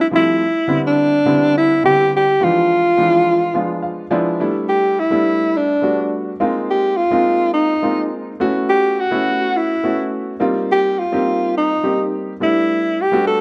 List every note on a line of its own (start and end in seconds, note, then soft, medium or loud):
0.01 0.07 E4 medium
0.11 0.40 F3 medium
0.11 0.41 G3 medium
0.11 0.41 A3 medium
0.11 0.41 C4 medium
0.11 0.41 E4 medium
0.15 0.81 E4 medium
0.68 1.17 D3 medium
0.68 1.17 G3 medium
0.68 1.17 B3 medium
0.68 1.17 C4 medium
0.68 1.17 E4 medium
0.87 1.53 D4 medium
1.26 1.74 D3 medium
1.26 1.74 G3 medium
1.26 1.75 B3 medium
1.26 1.75 C4 medium
1.26 1.75 E4 medium
1.57 1.83 E4 medium
1.84 2.32 D3 medium
1.84 2.32 G3 medium
1.84 2.32 B3 medium
1.84 2.32 C4 medium
1.84 2.32 E4 medium
1.84 2.11 G4 loud
2.17 2.45 G4 medium
2.41 2.90 E3 medium
2.41 2.89 F3 medium
2.41 2.89 G#3 medium
2.41 2.89 B3 medium
2.41 2.90 D4 medium
2.41 3.85 F4 loud
2.97 3.46 E3 medium
2.97 3.46 F3 medium
2.97 3.46 G#3 medium
2.97 3.46 B3 medium
2.97 3.46 D4 medium
3.54 4.03 F3 medium
3.54 4.03 G#3 medium
3.54 4.03 B3 medium
3.54 4.04 D4 medium
3.54 4.03 F4 medium
3.82 4.09 F5 medium
4.11 4.40 F3 medium
4.11 4.40 G#3 medium
4.11 4.39 B3 medium
4.11 4.39 D4 medium
4.11 4.39 E4 medium
4.11 4.38 D5 medium
4.40 5.01 G3 medium
4.40 5.01 A3 medium
4.40 5.01 B3 medium
4.40 5.01 D4 medium
4.40 5.01 E4 medium
4.69 5.01 G4 medium
4.99 5.59 E4 medium
5.10 5.72 G3 medium
5.10 5.72 A3 medium
5.10 5.72 B3 medium
5.10 5.72 D4 medium
5.10 5.72 E4 medium
5.57 6.13 D4 medium
5.82 6.31 G3 medium
5.82 6.31 A3 medium
5.82 6.31 B3 medium
5.82 6.31 D4 medium
5.82 6.32 F#4 medium
6.40 7.01 G#3 medium
6.40 7.01 A#3 medium
6.40 7.01 C4 medium
6.40 7.01 D#4 medium
6.40 7.01 F4 medium
6.70 6.98 G4 medium
6.97 7.53 F4 medium
7.11 7.72 G#3 medium
7.11 7.72 A#3 medium
7.11 7.72 C4 medium
7.11 7.72 D#4 medium
7.11 7.73 F4 medium
7.53 8.07 D#4 medium
7.82 8.31 G#3 medium
7.82 8.31 A#3 medium
7.82 8.32 C4 medium
7.82 8.32 D#4 medium
7.82 8.32 F4 medium
8.40 9.01 A3 medium
8.40 9.01 B3 medium
8.40 9.01 C#4 medium
8.40 9.01 E4 medium
8.40 9.02 F#4 loud
8.70 9.01 G4 medium
9.00 9.58 F#4 medium
9.11 9.72 A3 medium
9.11 9.72 B3 medium
9.11 9.73 C#4 medium
9.11 9.73 E4 medium
9.11 9.73 F#4 medium
9.57 10.13 E4 medium
9.84 10.32 A3 medium
9.84 10.32 B3 medium
9.84 10.32 C#4 medium
9.84 10.33 E4 medium
9.84 10.33 F#4 medium
10.40 11.01 G3 medium
10.40 11.01 A#3 medium
10.40 11.01 C4 medium
10.40 11.01 D#4 medium
10.40 11.02 F4 medium
10.72 11.00 G4 medium
10.99 11.56 F4 medium
11.12 11.73 G3 medium
11.12 11.73 A#3 medium
11.12 11.73 C4 medium
11.12 11.73 D#4 medium
11.12 11.74 G4 medium
11.57 12.10 D#4 medium
11.83 12.32 G3 medium
11.83 12.32 A#3 medium
11.83 12.32 C4 medium
11.83 12.32 D#4 medium
11.83 12.32 G4 medium
12.40 13.01 G3 medium
12.40 13.02 A3 medium
12.40 13.02 B3 medium
12.40 13.02 D4 medium
12.40 13.02 E4 medium
12.40 13.03 E4 medium
13.01 13.27 G4 medium
13.12 13.41 G3 medium
13.12 13.41 A3 medium
13.12 13.41 B3 medium
13.12 13.41 D4 medium
13.12 13.41 F#4 medium
13.27 13.41 A4 medium